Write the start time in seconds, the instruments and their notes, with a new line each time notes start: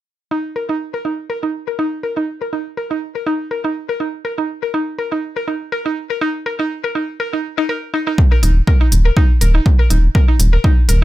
0.31 synth arpeggio sound D#4
0.56 synth arpeggio sound A#4
0.69 synth arpeggio sound D#4
0.94 synth arpeggio sound A#4
1.05 synth arpeggio sound D#4
1.30 synth arpeggio sound A#4
1.43 synth arpeggio sound D#4
1.68 synth arpeggio sound A#4
1.79 synth arpeggio sound D#4
2.03 synth arpeggio sound A#4
2.17 synth arpeggio sound D#4
2.41 synth arpeggio sound A#4
2.53 synth arpeggio sound D#4
2.77 synth arpeggio sound A#4
2.91 synth arpeggio sound D#4
3.15 synth arpeggio sound A#4
3.26 synth arpeggio sound D#4
3.51 synth arpeggio sound A#4
3.64 synth arpeggio sound D#4
3.89 synth arpeggio sound A#4
4.00 synth arpeggio sound D#4
4.25 synth arpeggio sound A#4
4.38 synth arpeggio sound D#4
4.63 synth arpeggio sound A#4
4.74 synth arpeggio sound D#4
4.99 synth arpeggio sound A#4
5.12 synth arpeggio sound D#4
5.37 synth arpeggio sound A#4
5.48 synth arpeggio sound D#4
5.72 synth arpeggio sound A#4
5.86 synth arpeggio sound D#4
6.10 synth arpeggio sound A#4
6.21 synth arpeggio sound D#4
6.46 synth arpeggio sound A#4
6.59 synth arpeggio sound D#4
6.84 synth arpeggio sound A#4
6.95 synth arpeggio sound D#4
7.20 synth arpeggio sound A#4
7.33 synth arpeggio sound D#4
7.58 synth arpeggio sound D#4
7.69 synth arpeggio sound A#4
7.94 synth arpeggio sound D#4
8.07 synth arpeggio sound D#4
8.18 kick
8.32 synth arpeggio sound A#4
8.43 analog synth bass D#1, synth arpeggio sound D#4, open hi-hat
8.67 synth arpeggio sound A#4, kick
8.81 synth arpeggio sound D#4
8.92 analog synth bass D#1, open hi-hat
9.05 synth arpeggio sound A#4
9.17 synth arpeggio sound D#4, kick
9.41 analog synth bass D#1, synth arpeggio sound A#4, open hi-hat
9.55 synth arpeggio sound D#4
9.66 kick
9.79 synth arpeggio sound A#4
9.90 analog synth bass D#1, synth arpeggio sound D#4, open hi-hat
10.15 synth arpeggio sound A#4, kick
10.28 synth arpeggio sound D#4
10.40 analog synth bass D#1, open hi-hat
10.53 synth arpeggio sound A#4
10.64 synth arpeggio sound D#4, kick
10.89 analog synth bass D#1, synth arpeggio sound A#4, open hi-hat